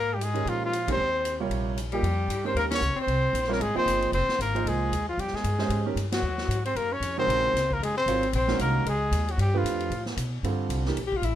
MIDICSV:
0, 0, Header, 1, 7, 480
1, 0, Start_track
1, 0, Tempo, 262582
1, 1799, Time_signature, 4, 2, 24, 8
1, 20750, End_track
2, 0, Start_track
2, 0, Title_t, "Trumpet"
2, 0, Program_c, 0, 56
2, 0, Note_on_c, 0, 70, 89
2, 253, Note_on_c, 0, 67, 65
2, 280, Note_off_c, 0, 70, 0
2, 440, Note_on_c, 0, 68, 91
2, 467, Note_off_c, 0, 67, 0
2, 895, Note_on_c, 0, 65, 87
2, 922, Note_off_c, 0, 68, 0
2, 1145, Note_off_c, 0, 65, 0
2, 1189, Note_on_c, 0, 65, 89
2, 1602, Note_off_c, 0, 65, 0
2, 1690, Note_on_c, 0, 72, 93
2, 2540, Note_off_c, 0, 72, 0
2, 3545, Note_on_c, 0, 67, 87
2, 4425, Note_off_c, 0, 67, 0
2, 4512, Note_on_c, 0, 72, 85
2, 4684, Note_off_c, 0, 72, 0
2, 4736, Note_on_c, 0, 70, 88
2, 4848, Note_off_c, 0, 70, 0
2, 5020, Note_on_c, 0, 73, 99
2, 5437, Note_off_c, 0, 73, 0
2, 5518, Note_on_c, 0, 72, 100
2, 6453, Note_on_c, 0, 70, 86
2, 6480, Note_off_c, 0, 72, 0
2, 6616, Note_on_c, 0, 68, 90
2, 6643, Note_off_c, 0, 70, 0
2, 6885, Note_off_c, 0, 68, 0
2, 6905, Note_on_c, 0, 72, 97
2, 7527, Note_off_c, 0, 72, 0
2, 7567, Note_on_c, 0, 72, 95
2, 8010, Note_off_c, 0, 72, 0
2, 8073, Note_on_c, 0, 70, 87
2, 8563, Note_on_c, 0, 68, 89
2, 8591, Note_off_c, 0, 70, 0
2, 9292, Note_off_c, 0, 68, 0
2, 9303, Note_on_c, 0, 65, 78
2, 9507, Note_on_c, 0, 67, 80
2, 9535, Note_off_c, 0, 65, 0
2, 9787, Note_on_c, 0, 68, 75
2, 9815, Note_off_c, 0, 67, 0
2, 10732, Note_off_c, 0, 68, 0
2, 11216, Note_on_c, 0, 66, 90
2, 12100, Note_off_c, 0, 66, 0
2, 12166, Note_on_c, 0, 72, 87
2, 12368, Note_on_c, 0, 70, 93
2, 12395, Note_off_c, 0, 72, 0
2, 12667, Note_on_c, 0, 73, 98
2, 12694, Note_off_c, 0, 70, 0
2, 13131, Note_off_c, 0, 73, 0
2, 13151, Note_on_c, 0, 72, 110
2, 14134, Note_on_c, 0, 70, 87
2, 14162, Note_off_c, 0, 72, 0
2, 14307, Note_off_c, 0, 70, 0
2, 14346, Note_on_c, 0, 68, 90
2, 14572, Note_off_c, 0, 68, 0
2, 14582, Note_on_c, 0, 72, 98
2, 15204, Note_off_c, 0, 72, 0
2, 15303, Note_on_c, 0, 72, 92
2, 15718, Note_off_c, 0, 72, 0
2, 15764, Note_on_c, 0, 70, 87
2, 16188, Note_off_c, 0, 70, 0
2, 16266, Note_on_c, 0, 68, 89
2, 17028, Note_on_c, 0, 66, 79
2, 17055, Note_off_c, 0, 68, 0
2, 17193, Note_off_c, 0, 66, 0
2, 17206, Note_on_c, 0, 67, 83
2, 17512, Note_on_c, 0, 65, 78
2, 17539, Note_off_c, 0, 67, 0
2, 18433, Note_off_c, 0, 65, 0
2, 20750, End_track
3, 0, Start_track
3, 0, Title_t, "Grand piano"
3, 0, Program_c, 1, 0
3, 620, Note_on_c, 1, 51, 61
3, 620, Note_on_c, 1, 56, 55
3, 629, Note_on_c, 1, 61, 54
3, 638, Note_on_c, 1, 67, 55
3, 638, Note_on_c, 1, 70, 68
3, 1270, Note_off_c, 1, 51, 0
3, 1270, Note_off_c, 1, 56, 0
3, 1275, Note_off_c, 1, 61, 0
3, 1279, Note_off_c, 1, 67, 0
3, 1279, Note_off_c, 1, 70, 0
3, 1598, Note_on_c, 1, 51, 65
3, 1611, Note_on_c, 1, 56, 63
3, 1611, Note_on_c, 1, 61, 59
3, 1614, Note_on_c, 1, 67, 62
3, 1616, Note_on_c, 1, 70, 71
3, 1780, Note_off_c, 1, 51, 0
3, 1786, Note_off_c, 1, 56, 0
3, 1786, Note_off_c, 1, 61, 0
3, 1788, Note_off_c, 1, 67, 0
3, 1789, Note_off_c, 1, 70, 0
3, 2557, Note_on_c, 1, 48, 62
3, 2564, Note_on_c, 1, 55, 69
3, 2567, Note_on_c, 1, 70, 59
3, 2571, Note_on_c, 1, 65, 67
3, 2583, Note_on_c, 1, 73, 76
3, 3199, Note_off_c, 1, 48, 0
3, 3203, Note_off_c, 1, 55, 0
3, 3204, Note_off_c, 1, 70, 0
3, 3206, Note_off_c, 1, 65, 0
3, 3212, Note_off_c, 1, 73, 0
3, 3520, Note_on_c, 1, 58, 51
3, 3527, Note_on_c, 1, 53, 54
3, 3533, Note_on_c, 1, 63, 49
3, 3540, Note_on_c, 1, 68, 48
3, 3544, Note_on_c, 1, 70, 56
3, 3701, Note_off_c, 1, 58, 0
3, 3705, Note_off_c, 1, 53, 0
3, 3707, Note_off_c, 1, 63, 0
3, 3711, Note_off_c, 1, 68, 0
3, 3713, Note_off_c, 1, 70, 0
3, 4467, Note_on_c, 1, 51, 60
3, 4468, Note_on_c, 1, 61, 57
3, 4473, Note_on_c, 1, 56, 54
3, 4477, Note_on_c, 1, 67, 55
3, 4485, Note_on_c, 1, 70, 66
3, 5114, Note_off_c, 1, 51, 0
3, 5115, Note_off_c, 1, 61, 0
3, 5117, Note_off_c, 1, 56, 0
3, 5119, Note_off_c, 1, 67, 0
3, 5123, Note_off_c, 1, 70, 0
3, 6367, Note_on_c, 1, 55, 72
3, 6384, Note_on_c, 1, 70, 70
3, 6385, Note_on_c, 1, 65, 65
3, 6386, Note_on_c, 1, 60, 69
3, 6403, Note_on_c, 1, 73, 78
3, 6565, Note_off_c, 1, 55, 0
3, 6573, Note_off_c, 1, 65, 0
3, 6573, Note_off_c, 1, 70, 0
3, 6574, Note_off_c, 1, 60, 0
3, 6582, Note_off_c, 1, 73, 0
3, 6853, Note_on_c, 1, 53, 72
3, 6859, Note_on_c, 1, 63, 70
3, 6862, Note_on_c, 1, 58, 71
3, 6868, Note_on_c, 1, 68, 69
3, 6868, Note_on_c, 1, 72, 81
3, 7507, Note_off_c, 1, 53, 0
3, 7510, Note_off_c, 1, 63, 0
3, 7511, Note_off_c, 1, 58, 0
3, 7514, Note_off_c, 1, 68, 0
3, 7515, Note_off_c, 1, 72, 0
3, 8314, Note_on_c, 1, 53, 68
3, 8319, Note_on_c, 1, 68, 65
3, 8320, Note_on_c, 1, 58, 62
3, 8327, Note_on_c, 1, 63, 62
3, 8329, Note_on_c, 1, 72, 71
3, 8958, Note_off_c, 1, 53, 0
3, 8960, Note_off_c, 1, 58, 0
3, 8960, Note_off_c, 1, 68, 0
3, 8964, Note_off_c, 1, 63, 0
3, 8965, Note_off_c, 1, 72, 0
3, 10218, Note_on_c, 1, 56, 72
3, 10220, Note_on_c, 1, 61, 61
3, 10227, Note_on_c, 1, 67, 60
3, 10233, Note_on_c, 1, 72, 62
3, 10241, Note_on_c, 1, 75, 76
3, 10680, Note_off_c, 1, 56, 0
3, 10681, Note_off_c, 1, 61, 0
3, 10684, Note_off_c, 1, 67, 0
3, 10687, Note_off_c, 1, 72, 0
3, 10691, Note_off_c, 1, 75, 0
3, 10701, Note_on_c, 1, 51, 68
3, 10714, Note_on_c, 1, 61, 58
3, 10715, Note_on_c, 1, 67, 62
3, 10718, Note_on_c, 1, 56, 61
3, 10723, Note_on_c, 1, 70, 74
3, 10891, Note_off_c, 1, 51, 0
3, 10898, Note_off_c, 1, 61, 0
3, 10898, Note_off_c, 1, 67, 0
3, 10899, Note_off_c, 1, 56, 0
3, 10902, Note_off_c, 1, 70, 0
3, 13114, Note_on_c, 1, 51, 77
3, 13117, Note_on_c, 1, 56, 69
3, 13121, Note_on_c, 1, 49, 67
3, 13130, Note_on_c, 1, 66, 68
3, 13133, Note_on_c, 1, 70, 82
3, 13757, Note_off_c, 1, 51, 0
3, 13758, Note_off_c, 1, 56, 0
3, 13760, Note_off_c, 1, 49, 0
3, 13765, Note_off_c, 1, 66, 0
3, 13766, Note_off_c, 1, 70, 0
3, 14770, Note_on_c, 1, 54, 69
3, 14772, Note_on_c, 1, 60, 62
3, 14777, Note_on_c, 1, 65, 65
3, 14786, Note_on_c, 1, 73, 76
3, 14789, Note_on_c, 1, 70, 62
3, 15013, Note_off_c, 1, 54, 0
3, 15014, Note_off_c, 1, 60, 0
3, 15017, Note_off_c, 1, 65, 0
3, 15021, Note_off_c, 1, 73, 0
3, 15023, Note_off_c, 1, 70, 0
3, 15497, Note_on_c, 1, 51, 77
3, 15502, Note_on_c, 1, 56, 70
3, 15507, Note_on_c, 1, 66, 68
3, 15512, Note_on_c, 1, 61, 68
3, 15518, Note_on_c, 1, 70, 81
3, 16147, Note_off_c, 1, 51, 0
3, 16150, Note_off_c, 1, 56, 0
3, 16153, Note_off_c, 1, 66, 0
3, 16155, Note_off_c, 1, 61, 0
3, 16158, Note_off_c, 1, 70, 0
3, 17440, Note_on_c, 1, 53, 69
3, 17449, Note_on_c, 1, 57, 62
3, 17450, Note_on_c, 1, 62, 58
3, 17452, Note_on_c, 1, 71, 76
3, 17456, Note_on_c, 1, 67, 63
3, 18079, Note_off_c, 1, 53, 0
3, 18083, Note_off_c, 1, 57, 0
3, 18084, Note_off_c, 1, 62, 0
3, 18085, Note_off_c, 1, 71, 0
3, 18087, Note_off_c, 1, 67, 0
3, 19086, Note_on_c, 1, 50, 61
3, 19097, Note_on_c, 1, 60, 56
3, 19099, Note_on_c, 1, 55, 56
3, 19110, Note_on_c, 1, 69, 66
3, 19112, Note_on_c, 1, 65, 55
3, 19783, Note_off_c, 1, 50, 0
3, 19789, Note_off_c, 1, 60, 0
3, 19790, Note_off_c, 1, 55, 0
3, 19795, Note_off_c, 1, 69, 0
3, 19796, Note_off_c, 1, 65, 0
3, 19860, Note_on_c, 1, 57, 56
3, 19861, Note_on_c, 1, 52, 65
3, 19866, Note_on_c, 1, 62, 57
3, 19872, Note_on_c, 1, 67, 60
3, 19875, Note_on_c, 1, 70, 71
3, 20029, Note_off_c, 1, 57, 0
3, 20030, Note_off_c, 1, 52, 0
3, 20032, Note_off_c, 1, 62, 0
3, 20035, Note_off_c, 1, 67, 0
3, 20037, Note_off_c, 1, 70, 0
3, 20750, End_track
4, 0, Start_track
4, 0, Title_t, "Tenor saxophone"
4, 0, Program_c, 2, 66
4, 0, Note_on_c, 2, 58, 82
4, 316, Note_on_c, 2, 55, 53
4, 344, Note_off_c, 2, 58, 0
4, 424, Note_on_c, 2, 56, 73
4, 452, Note_off_c, 2, 55, 0
4, 886, Note_on_c, 2, 53, 73
4, 914, Note_off_c, 2, 56, 0
4, 1140, Note_off_c, 2, 53, 0
4, 1183, Note_on_c, 2, 53, 73
4, 1599, Note_off_c, 2, 53, 0
4, 1637, Note_on_c, 2, 60, 80
4, 2511, Note_off_c, 2, 60, 0
4, 3511, Note_on_c, 2, 55, 76
4, 4407, Note_off_c, 2, 55, 0
4, 4486, Note_on_c, 2, 60, 72
4, 4671, Note_off_c, 2, 60, 0
4, 4687, Note_on_c, 2, 58, 79
4, 4810, Note_off_c, 2, 58, 0
4, 4944, Note_on_c, 2, 61, 82
4, 5397, Note_off_c, 2, 61, 0
4, 5406, Note_on_c, 2, 60, 94
4, 6367, Note_on_c, 2, 58, 79
4, 6395, Note_off_c, 2, 60, 0
4, 6584, Note_on_c, 2, 56, 76
4, 6611, Note_off_c, 2, 58, 0
4, 6869, Note_off_c, 2, 56, 0
4, 6877, Note_on_c, 2, 60, 82
4, 7512, Note_off_c, 2, 60, 0
4, 7574, Note_on_c, 2, 60, 79
4, 8014, Note_off_c, 2, 60, 0
4, 8079, Note_on_c, 2, 58, 77
4, 8532, Note_on_c, 2, 56, 73
4, 8559, Note_off_c, 2, 58, 0
4, 9283, Note_off_c, 2, 56, 0
4, 9291, Note_on_c, 2, 53, 65
4, 9489, Note_on_c, 2, 55, 72
4, 9516, Note_off_c, 2, 53, 0
4, 9770, Note_on_c, 2, 56, 68
4, 9797, Note_off_c, 2, 55, 0
4, 10723, Note_off_c, 2, 56, 0
4, 11185, Note_on_c, 2, 54, 84
4, 12083, Note_off_c, 2, 54, 0
4, 12175, Note_on_c, 2, 60, 78
4, 12377, Note_on_c, 2, 58, 81
4, 12405, Note_off_c, 2, 60, 0
4, 12651, Note_on_c, 2, 61, 88
4, 12678, Note_off_c, 2, 58, 0
4, 13120, Note_off_c, 2, 61, 0
4, 13131, Note_on_c, 2, 60, 85
4, 14107, Note_on_c, 2, 58, 76
4, 14135, Note_off_c, 2, 60, 0
4, 14294, Note_off_c, 2, 58, 0
4, 14305, Note_on_c, 2, 56, 74
4, 14551, Note_off_c, 2, 56, 0
4, 14565, Note_on_c, 2, 60, 77
4, 15195, Note_off_c, 2, 60, 0
4, 15266, Note_on_c, 2, 60, 86
4, 15699, Note_off_c, 2, 60, 0
4, 15739, Note_on_c, 2, 58, 77
4, 16175, Note_off_c, 2, 58, 0
4, 16207, Note_on_c, 2, 56, 75
4, 16987, Note_on_c, 2, 54, 66
4, 17014, Note_off_c, 2, 56, 0
4, 17159, Note_off_c, 2, 54, 0
4, 17169, Note_on_c, 2, 55, 75
4, 17439, Note_on_c, 2, 53, 66
4, 17466, Note_off_c, 2, 55, 0
4, 18396, Note_off_c, 2, 53, 0
4, 20236, Note_on_c, 2, 67, 74
4, 20413, Note_on_c, 2, 65, 84
4, 20440, Note_off_c, 2, 67, 0
4, 20566, Note_on_c, 2, 64, 76
4, 20593, Note_off_c, 2, 65, 0
4, 20750, Note_off_c, 2, 64, 0
4, 20750, End_track
5, 0, Start_track
5, 0, Title_t, "Upright bass"
5, 0, Program_c, 3, 32
5, 0, Note_on_c, 3, 44, 84
5, 791, Note_off_c, 3, 44, 0
5, 836, Note_on_c, 3, 46, 69
5, 1750, Note_off_c, 3, 46, 0
5, 1785, Note_on_c, 3, 39, 85
5, 2704, Note_off_c, 3, 39, 0
5, 2731, Note_on_c, 3, 34, 70
5, 3657, Note_off_c, 3, 34, 0
5, 3697, Note_on_c, 3, 41, 81
5, 4158, Note_off_c, 3, 41, 0
5, 4169, Note_on_c, 3, 43, 82
5, 4650, Note_off_c, 3, 43, 0
5, 4657, Note_on_c, 3, 39, 70
5, 5128, Note_off_c, 3, 39, 0
5, 5139, Note_on_c, 3, 37, 80
5, 5390, Note_off_c, 3, 37, 0
5, 5610, Note_on_c, 3, 36, 85
5, 6077, Note_off_c, 3, 36, 0
5, 6088, Note_on_c, 3, 34, 89
5, 6569, Note_off_c, 3, 34, 0
5, 6583, Note_on_c, 3, 32, 73
5, 6849, Note_off_c, 3, 32, 0
5, 7055, Note_on_c, 3, 31, 87
5, 7523, Note_off_c, 3, 31, 0
5, 7534, Note_on_c, 3, 29, 86
5, 7793, Note_off_c, 3, 29, 0
5, 8021, Note_on_c, 3, 32, 88
5, 8495, Note_off_c, 3, 32, 0
5, 8507, Note_on_c, 3, 36, 72
5, 8978, Note_off_c, 3, 36, 0
5, 8986, Note_on_c, 3, 39, 84
5, 9451, Note_off_c, 3, 39, 0
5, 9462, Note_on_c, 3, 41, 87
5, 9728, Note_off_c, 3, 41, 0
5, 9942, Note_on_c, 3, 43, 82
5, 10396, Note_off_c, 3, 43, 0
5, 10407, Note_on_c, 3, 44, 75
5, 10875, Note_off_c, 3, 44, 0
5, 10886, Note_on_c, 3, 43, 79
5, 11368, Note_off_c, 3, 43, 0
5, 11375, Note_on_c, 3, 39, 81
5, 11836, Note_off_c, 3, 39, 0
5, 11847, Note_on_c, 3, 44, 81
5, 12328, Note_off_c, 3, 44, 0
5, 12339, Note_on_c, 3, 42, 74
5, 12793, Note_off_c, 3, 42, 0
5, 12804, Note_on_c, 3, 41, 83
5, 13280, Note_off_c, 3, 41, 0
5, 13291, Note_on_c, 3, 34, 90
5, 13763, Note_off_c, 3, 34, 0
5, 13774, Note_on_c, 3, 37, 86
5, 14251, Note_off_c, 3, 37, 0
5, 14264, Note_on_c, 3, 30, 76
5, 14727, Note_off_c, 3, 30, 0
5, 14738, Note_on_c, 3, 32, 88
5, 15213, Note_off_c, 3, 32, 0
5, 15231, Note_on_c, 3, 34, 89
5, 15699, Note_off_c, 3, 34, 0
5, 15710, Note_on_c, 3, 36, 86
5, 16173, Note_off_c, 3, 36, 0
5, 16184, Note_on_c, 3, 37, 82
5, 16649, Note_off_c, 3, 37, 0
5, 16660, Note_on_c, 3, 39, 89
5, 17128, Note_off_c, 3, 39, 0
5, 17139, Note_on_c, 3, 43, 88
5, 17605, Note_off_c, 3, 43, 0
5, 17616, Note_on_c, 3, 41, 93
5, 18091, Note_off_c, 3, 41, 0
5, 18100, Note_on_c, 3, 45, 81
5, 18573, Note_off_c, 3, 45, 0
5, 18588, Note_on_c, 3, 47, 88
5, 19057, Note_off_c, 3, 47, 0
5, 19069, Note_on_c, 3, 43, 80
5, 19532, Note_off_c, 3, 43, 0
5, 19543, Note_on_c, 3, 36, 83
5, 20015, Note_off_c, 3, 36, 0
5, 20042, Note_on_c, 3, 34, 69
5, 20495, Note_off_c, 3, 34, 0
5, 20506, Note_on_c, 3, 33, 86
5, 20750, Note_off_c, 3, 33, 0
5, 20750, End_track
6, 0, Start_track
6, 0, Title_t, "Muted upright bass strokes"
6, 5401, Note_on_c, 9, 29, 36
6, 5584, Note_off_c, 9, 29, 0
6, 6863, Note_on_c, 9, 29, 38
6, 7046, Note_off_c, 9, 29, 0
6, 9744, Note_on_c, 9, 29, 40
6, 9927, Note_off_c, 9, 29, 0
6, 20750, End_track
7, 0, Start_track
7, 0, Title_t, "Drums"
7, 387, Note_on_c, 9, 44, 56
7, 387, Note_on_c, 9, 51, 63
7, 569, Note_off_c, 9, 44, 0
7, 569, Note_off_c, 9, 51, 0
7, 647, Note_on_c, 9, 51, 40
7, 830, Note_off_c, 9, 51, 0
7, 864, Note_on_c, 9, 51, 55
7, 1046, Note_off_c, 9, 51, 0
7, 1338, Note_on_c, 9, 44, 56
7, 1338, Note_on_c, 9, 51, 63
7, 1521, Note_off_c, 9, 44, 0
7, 1521, Note_off_c, 9, 51, 0
7, 1605, Note_on_c, 9, 36, 77
7, 1610, Note_on_c, 9, 51, 69
7, 1788, Note_off_c, 9, 36, 0
7, 1793, Note_off_c, 9, 51, 0
7, 2284, Note_on_c, 9, 44, 54
7, 2284, Note_on_c, 9, 51, 64
7, 2467, Note_off_c, 9, 44, 0
7, 2467, Note_off_c, 9, 51, 0
7, 2758, Note_on_c, 9, 51, 56
7, 2941, Note_off_c, 9, 51, 0
7, 3244, Note_on_c, 9, 44, 61
7, 3244, Note_on_c, 9, 51, 62
7, 3427, Note_off_c, 9, 44, 0
7, 3427, Note_off_c, 9, 51, 0
7, 3507, Note_on_c, 9, 51, 41
7, 3690, Note_off_c, 9, 51, 0
7, 3727, Note_on_c, 9, 51, 57
7, 3909, Note_off_c, 9, 51, 0
7, 4204, Note_on_c, 9, 44, 53
7, 4204, Note_on_c, 9, 51, 66
7, 4387, Note_off_c, 9, 44, 0
7, 4387, Note_off_c, 9, 51, 0
7, 4688, Note_on_c, 9, 51, 57
7, 4871, Note_off_c, 9, 51, 0
7, 4958, Note_on_c, 9, 38, 76
7, 4962, Note_on_c, 9, 51, 60
7, 5141, Note_off_c, 9, 38, 0
7, 5144, Note_on_c, 9, 44, 50
7, 5145, Note_off_c, 9, 51, 0
7, 5326, Note_off_c, 9, 44, 0
7, 5632, Note_on_c, 9, 51, 55
7, 5815, Note_off_c, 9, 51, 0
7, 6119, Note_on_c, 9, 44, 59
7, 6119, Note_on_c, 9, 51, 63
7, 6290, Note_on_c, 9, 38, 26
7, 6302, Note_off_c, 9, 44, 0
7, 6302, Note_off_c, 9, 51, 0
7, 6444, Note_off_c, 9, 38, 0
7, 6444, Note_on_c, 9, 38, 41
7, 6597, Note_on_c, 9, 51, 64
7, 6627, Note_off_c, 9, 38, 0
7, 6780, Note_off_c, 9, 51, 0
7, 7086, Note_on_c, 9, 44, 62
7, 7086, Note_on_c, 9, 51, 65
7, 7268, Note_off_c, 9, 44, 0
7, 7268, Note_off_c, 9, 51, 0
7, 7355, Note_on_c, 9, 51, 46
7, 7537, Note_off_c, 9, 51, 0
7, 7550, Note_on_c, 9, 51, 58
7, 7733, Note_off_c, 9, 51, 0
7, 7837, Note_on_c, 9, 38, 50
7, 8020, Note_off_c, 9, 38, 0
7, 8053, Note_on_c, 9, 44, 50
7, 8053, Note_on_c, 9, 51, 63
7, 8236, Note_off_c, 9, 44, 0
7, 8236, Note_off_c, 9, 51, 0
7, 8332, Note_on_c, 9, 51, 43
7, 8515, Note_off_c, 9, 51, 0
7, 8534, Note_on_c, 9, 51, 62
7, 8717, Note_off_c, 9, 51, 0
7, 9008, Note_on_c, 9, 44, 53
7, 9008, Note_on_c, 9, 51, 66
7, 9191, Note_off_c, 9, 44, 0
7, 9191, Note_off_c, 9, 51, 0
7, 9490, Note_on_c, 9, 51, 54
7, 9644, Note_on_c, 9, 38, 25
7, 9672, Note_off_c, 9, 51, 0
7, 9794, Note_off_c, 9, 38, 0
7, 9794, Note_on_c, 9, 38, 40
7, 9949, Note_on_c, 9, 44, 52
7, 9949, Note_on_c, 9, 51, 63
7, 9976, Note_off_c, 9, 38, 0
7, 10132, Note_off_c, 9, 44, 0
7, 10132, Note_off_c, 9, 51, 0
7, 10209, Note_on_c, 9, 38, 49
7, 10392, Note_off_c, 9, 38, 0
7, 10424, Note_on_c, 9, 51, 62
7, 10606, Note_off_c, 9, 51, 0
7, 10913, Note_on_c, 9, 44, 51
7, 10913, Note_on_c, 9, 51, 66
7, 11096, Note_off_c, 9, 44, 0
7, 11096, Note_off_c, 9, 51, 0
7, 11190, Note_on_c, 9, 38, 79
7, 11194, Note_on_c, 9, 51, 68
7, 11373, Note_off_c, 9, 38, 0
7, 11376, Note_off_c, 9, 51, 0
7, 11660, Note_on_c, 9, 38, 50
7, 11843, Note_off_c, 9, 38, 0
7, 11896, Note_on_c, 9, 44, 59
7, 11896, Note_on_c, 9, 51, 65
7, 12079, Note_off_c, 9, 44, 0
7, 12079, Note_off_c, 9, 51, 0
7, 12164, Note_on_c, 9, 51, 46
7, 12347, Note_off_c, 9, 51, 0
7, 12362, Note_on_c, 9, 51, 57
7, 12545, Note_off_c, 9, 51, 0
7, 12839, Note_on_c, 9, 44, 50
7, 12839, Note_on_c, 9, 51, 69
7, 13022, Note_off_c, 9, 44, 0
7, 13022, Note_off_c, 9, 51, 0
7, 13342, Note_on_c, 9, 51, 63
7, 13525, Note_off_c, 9, 51, 0
7, 13825, Note_on_c, 9, 38, 36
7, 13829, Note_on_c, 9, 44, 62
7, 13829, Note_on_c, 9, 51, 62
7, 14008, Note_off_c, 9, 38, 0
7, 14012, Note_off_c, 9, 44, 0
7, 14012, Note_off_c, 9, 51, 0
7, 14089, Note_on_c, 9, 36, 49
7, 14272, Note_off_c, 9, 36, 0
7, 14317, Note_on_c, 9, 51, 64
7, 14500, Note_off_c, 9, 51, 0
7, 14765, Note_on_c, 9, 44, 59
7, 14765, Note_on_c, 9, 51, 69
7, 14947, Note_off_c, 9, 44, 0
7, 14947, Note_off_c, 9, 51, 0
7, 15043, Note_on_c, 9, 51, 44
7, 15225, Note_off_c, 9, 51, 0
7, 15230, Note_on_c, 9, 51, 68
7, 15413, Note_off_c, 9, 51, 0
7, 15496, Note_on_c, 9, 38, 49
7, 15679, Note_off_c, 9, 38, 0
7, 15709, Note_on_c, 9, 44, 59
7, 15709, Note_on_c, 9, 51, 65
7, 15892, Note_off_c, 9, 44, 0
7, 15892, Note_off_c, 9, 51, 0
7, 16203, Note_on_c, 9, 51, 65
7, 16386, Note_off_c, 9, 51, 0
7, 16679, Note_on_c, 9, 44, 54
7, 16679, Note_on_c, 9, 51, 74
7, 16862, Note_off_c, 9, 44, 0
7, 16862, Note_off_c, 9, 51, 0
7, 16971, Note_on_c, 9, 51, 47
7, 17154, Note_off_c, 9, 51, 0
7, 17167, Note_on_c, 9, 51, 62
7, 17350, Note_off_c, 9, 51, 0
7, 17652, Note_on_c, 9, 44, 60
7, 17652, Note_on_c, 9, 51, 65
7, 17835, Note_off_c, 9, 44, 0
7, 17835, Note_off_c, 9, 51, 0
7, 17922, Note_on_c, 9, 51, 43
7, 18104, Note_off_c, 9, 51, 0
7, 18124, Note_on_c, 9, 51, 54
7, 18307, Note_off_c, 9, 51, 0
7, 18391, Note_on_c, 9, 38, 56
7, 18574, Note_off_c, 9, 38, 0
7, 18598, Note_on_c, 9, 44, 58
7, 18598, Note_on_c, 9, 51, 72
7, 18780, Note_off_c, 9, 44, 0
7, 18780, Note_off_c, 9, 51, 0
7, 19091, Note_on_c, 9, 51, 59
7, 19274, Note_off_c, 9, 51, 0
7, 19558, Note_on_c, 9, 44, 53
7, 19558, Note_on_c, 9, 51, 73
7, 19741, Note_off_c, 9, 44, 0
7, 19741, Note_off_c, 9, 51, 0
7, 19845, Note_on_c, 9, 38, 43
7, 20028, Note_off_c, 9, 38, 0
7, 20048, Note_on_c, 9, 51, 63
7, 20231, Note_off_c, 9, 51, 0
7, 20328, Note_on_c, 9, 36, 53
7, 20511, Note_off_c, 9, 36, 0
7, 20527, Note_on_c, 9, 44, 53
7, 20527, Note_on_c, 9, 51, 66
7, 20710, Note_off_c, 9, 44, 0
7, 20710, Note_off_c, 9, 51, 0
7, 20750, End_track
0, 0, End_of_file